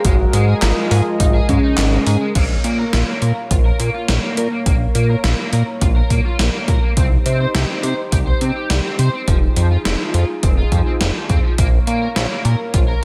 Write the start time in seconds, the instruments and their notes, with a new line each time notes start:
Already playing: analog synth pad A#4
0.05 analog synth bass G#1, synth arpeggio sound G#3, overdriven electric guitar G#3, analog synth pad G#3 G#4 D#5, soft synth lead F#4, kick, closed hi-hat
0.33 analog synth bass G#2, overdriven electric guitar G#3, closed hi-hat
0.48 overdriven electric guitar G#4
0.62 analog synth bass G#1, overdriven electric guitar D#4, soft synth lead F4, synth arpeggio sound A#4, snare, clap, closed hi-hat
0.77 overdriven electric guitar G#3
0.91 analog synth bass G#2, overdriven electric guitar G#4, synth arpeggio sound A#4, open hi-hat
1.20 analog synth bass G#1, overdriven electric guitar D#4, synth arpeggio sound D#5, kick, closed hi-hat
1.34 overdriven electric guitar G#4
1.49 analog synth bass G#2, synth arpeggio sound G#3, overdriven electric guitar G#3, soft synth lead C#4, kick, closed hi-hat
1.63 overdriven electric guitar D#4
1.78 analog synth bass G#1, synth arpeggio sound D#4, snare, clap, closed hi-hat
1.92 overdriven electric guitar G#3
2.06 analog synth bass G#2, overdriven electric guitar G#4, open hi-hat
2.21 overdriven electric guitar G#3
2.35 analog synth bass A#1, analog synth pad A#3 A#4 C#5 F5, overdriven electric guitar A#3, kick, closed hi-hat, crash
2.64 analog synth bass A#2, overdriven electric guitar A#3, closed hi-hat
2.79 overdriven electric guitar A#4
2.93 analog synth bass A#1, overdriven electric guitar F4, snare, closed hi-hat
3.08 overdriven electric guitar A#3
3.22 analog synth bass A#2, overdriven electric guitar A#4, closed hi-hat
3.51 analog synth bass A#1, overdriven electric guitar F4, kick, closed hi-hat
3.65 overdriven electric guitar A#4
3.80 analog synth bass A#2, overdriven electric guitar A#3, closed hi-hat
3.94 overdriven electric guitar F4
4.08 analog synth bass A#1, snare, closed hi-hat
4.23 overdriven electric guitar A#3
4.37 analog synth bass A#2, overdriven electric guitar A#4, closed hi-hat
4.52 overdriven electric guitar A#3
4.66 analog synth bass A#1, overdriven electric guitar A#3, kick, closed hi-hat
4.95 analog synth bass A#2, overdriven electric guitar A#3, closed hi-hat
5.09 overdriven electric guitar A#4
5.24 analog synth bass A#1, overdriven electric guitar F4, snare, closed hi-hat
5.38 overdriven electric guitar A#3
5.53 analog synth bass A#2, overdriven electric guitar A#4, closed hi-hat
5.81 analog synth bass A#1, overdriven electric guitar F4, kick, closed hi-hat
5.96 overdriven electric guitar A#4
6.10 analog synth bass A#2, overdriven electric guitar A#3, kick, closed hi-hat
6.25 overdriven electric guitar F4
6.39 analog synth bass A#1, snare, closed hi-hat
6.54 overdriven electric guitar A#3
6.68 analog synth bass A#2, overdriven electric guitar A#4, kick, closed hi-hat
6.83 overdriven electric guitar A#3
6.97 analog synth bass C2, overdriven electric guitar C4, analog synth pad D#4 G4 C5, kick, closed hi-hat
7.26 analog synth bass C3, overdriven electric guitar C4, closed hi-hat
7.40 overdriven electric guitar C5
7.55 analog synth bass C2, overdriven electric guitar G4, snare, closed hi-hat
7.69 overdriven electric guitar C4
7.83 analog synth bass C3, overdriven electric guitar C5, closed hi-hat
8.12 analog synth bass C2, overdriven electric guitar G4, kick, closed hi-hat
8.27 overdriven electric guitar C5
8.41 analog synth bass C3, overdriven electric guitar C4, closed hi-hat
8.56 overdriven electric guitar G4
8.70 analog synth bass C2, snare, closed hi-hat
8.84 overdriven electric guitar C4
8.99 analog synth bass C3, overdriven electric guitar C5, closed hi-hat
9.13 overdriven electric guitar C4
9.28 analog synth bass F1, overdriven electric guitar F3, analog synth pad D#4 F4 G#4, kick, closed hi-hat
9.56 analog synth bass F2, overdriven electric guitar F3, closed hi-hat
9.71 overdriven electric guitar F4
9.85 analog synth bass F1, overdriven electric guitar C4, snare, closed hi-hat
10.00 overdriven electric guitar F3
10.14 analog synth bass F2, overdriven electric guitar F4, closed hi-hat
10.43 analog synth bass F1, overdriven electric guitar C4, kick, closed hi-hat
10.57 overdriven electric guitar F4
10.72 analog synth bass F2, overdriven electric guitar F3, kick, closed hi-hat
10.86 overdriven electric guitar C4
11.01 analog synth bass F1, snare, closed hi-hat
11.15 overdriven electric guitar F3
11.29 analog synth bass F2, overdriven electric guitar C4, kick, closed hi-hat
11.44 overdriven electric guitar F3
11.58 analog synth bass A#1, analog synth pad A#3 A#4 C#5 F5, overdriven electric guitar A#3, kick, closed hi-hat
11.87 analog synth bass A#2, overdriven electric guitar A#3, closed hi-hat
12.02 overdriven electric guitar A#4
12.16 analog synth bass A#1, overdriven electric guitar F4, snare, closed hi-hat
12.31 overdriven electric guitar A#3
12.45 analog synth bass A#2, overdriven electric guitar A#4, closed hi-hat
12.74 analog synth bass A#1, overdriven electric guitar F4, kick, closed hi-hat
12.88 overdriven electric guitar A#4